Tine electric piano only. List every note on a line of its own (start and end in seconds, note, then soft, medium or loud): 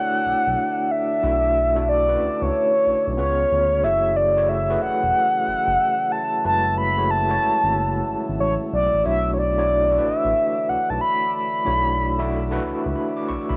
0.00 1.22 A3 medium
0.00 1.22 D4 medium
0.00 1.23 E4 medium
0.00 1.23 F#4 medium
0.00 3.19 C#5 medium
1.22 1.68 A3 medium
1.22 1.69 D4 medium
1.22 1.69 E4 medium
1.22 1.69 F#4 medium
1.22 1.69 E5 medium
1.75 2.03 A3 medium
1.75 2.03 D4 medium
1.75 2.03 E4 medium
1.75 2.04 F#4 medium
1.75 2.04 A4 medium
2.08 3.17 A3 medium
2.08 2.13 C#4 medium
2.08 3.18 E4 medium
2.08 3.18 F#4 medium
2.08 3.18 B4 medium
2.15 3.21 D4 medium
3.17 3.77 B3 medium
3.17 3.78 C#4 medium
3.17 3.78 F4 medium
3.17 3.78 G#4 medium
3.17 3.26 B4 medium
3.25 3.81 C#5 medium
3.83 4.29 A3 medium
3.83 4.29 E4 medium
3.83 4.30 F#4 medium
3.83 4.30 G#4 medium
3.83 4.30 C#5 medium
4.36 4.64 A3 medium
4.36 4.64 E4 medium
4.36 4.65 F#4 medium
4.36 4.65 G#4 medium
4.36 4.65 C#5 medium
4.69 5.81 A3 medium
4.69 5.81 E4 medium
4.69 5.82 F#4 medium
4.69 5.82 G#4 medium
4.69 5.82 B4 medium
6.44 6.91 G#3 medium
6.44 6.90 A3 medium
6.44 6.90 E4 medium
6.44 6.90 F#4 medium
6.44 6.91 B4 medium
6.97 7.25 A3 medium
6.97 7.25 E4 medium
6.97 7.25 F#4 medium
6.97 7.25 G#4 medium
6.97 7.26 C#5 medium
7.29 8.42 G#3 medium
7.29 8.41 A3 medium
7.29 8.42 E4 medium
7.29 8.42 F#4 medium
7.29 8.42 C#5 medium
9.04 9.51 A3 medium
9.04 9.51 D4 medium
9.04 9.51 E4 medium
9.04 9.51 F#4 medium
9.04 9.51 C#5 medium
9.57 9.86 A3 medium
9.57 9.86 D4 medium
9.57 9.86 E4 medium
9.57 9.86 F#4 medium
9.57 9.86 C#5 medium
9.90 11.02 A3 medium
9.90 11.03 D4 medium
9.90 11.03 E4 medium
9.90 11.03 F#4 medium
9.90 9.96 A4 medium
9.98 11.07 B4 medium
11.65 12.11 A3 medium
11.65 12.12 D4 medium
11.65 12.12 E4 medium
11.65 12.12 F#4 medium
11.65 12.12 C#5 medium
12.18 12.46 A3 medium
12.18 12.47 D4 medium
12.18 12.47 E4 medium
12.18 12.47 F#4 medium
12.18 12.47 E5 loud
12.51 13.57 A3 medium
12.51 13.57 D4 medium
12.51 13.57 E4 medium
12.51 13.57 F#4 medium
12.51 13.57 B4 loud
12.96 13.15 B5 medium
13.17 13.28 D6 medium
13.29 13.48 C#6 medium
13.49 13.57 B5 medium